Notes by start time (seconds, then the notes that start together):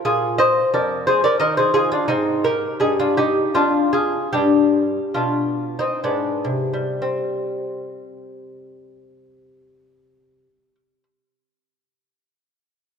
0.05 A#2 F4 G#4
0.38 C5 D#5
0.74 F2 A#4 D5
1.07 G#4 C5
1.24 A#4 D5
1.40 D#3 A#4 D#5
1.57 G#4 C5
1.74 F4 G#4
1.92 D4 F4
2.08 G#2 C4 D#4
2.44 G4 A#4
2.80 G2 D#4 G#4
2.99 D4 F4
3.17 D#4 G4
3.54 F2 D4 F4
3.93 F4 G#4
4.33 G2 D4 G4
5.14 B2 D4 F4
5.79 C4 D#4
6.04 G#2 B3 D4
6.45 C3
6.73 G3
7.02 C4